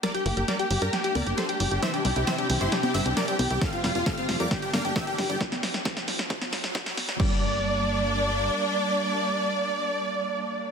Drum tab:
CC |----------------|----------------|----------------|----------------|
HH |xxoxxxoxxxoxxxox|xxoxxxoxxxoxxxox|xxoxxxoxxxoxxxox|xxoxxxoxxxoxxxox|
SD |o---o---o---o---|o---o---o---o---|o-o-o-o-o-o-o-o-|oooooooooooooooo|
CG |----------o-----|---------o----o-|----------o-----|-o-------o----o-|
BD |----------------|----------------|o---o---o---o---|o---o---o---o---|

CC |x---------------|----------------|
HH |----------------|----------------|
SD |----------------|----------------|
CG |----------------|----------------|
BD |o---------------|----------------|